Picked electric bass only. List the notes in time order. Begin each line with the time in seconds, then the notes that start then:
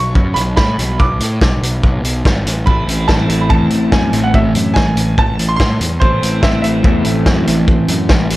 Already playing: B1
0.15 F#2
0.36 B1
0.57 A2
0.78 B1
1.00 B1
1.20 A2
1.41 B1
1.61 B1
1.84 B1
2.03 B1
2.25 G#1
2.45 A1
2.67 A1
2.86 A1
3.09 A1
3.28 A1
3.50 E2
3.70 A1
3.92 F#2
4.12 A1
4.34 A1
4.55 F#2
4.76 A1
4.96 A1
5.18 A1
5.38 A1
5.60 A2
5.80 E2
6.02 A1
6.22 A1
6.43 A1
6.64 A1
6.84 E2
7.06 A1
7.26 F#2
7.47 A1
7.68 A1
7.88 F#2
8.10 A1
8.30 A1